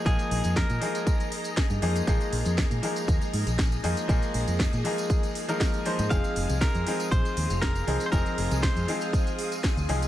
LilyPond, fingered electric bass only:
\new Staff \with { instrumentName = "Fingered electric bass" } { \clef bass \time 4/4 \key bes \dorian \tempo 4 = 119 bes,,16 r16 bes,,16 f,16 r16 bes,16 r4. r16 g,16 f,16 r16 | bes,,16 r16 bes,,16 f,16 r16 bes,16 r8 ees,16 r16 aes,16 bes,,8. f,16 r16 | bes,,16 r16 bes,,16 f,16 r16 bes,16 r2 r16 aes,16 | f,,16 r16 f,,16 c,16 r16 f,16 r8 bes,,16 r16 ees,16 f,,8. c,16 r16 |
f,,16 r16 f,,16 c,16 r16 f,16 r4. r16 d,16 c,16 r16 | }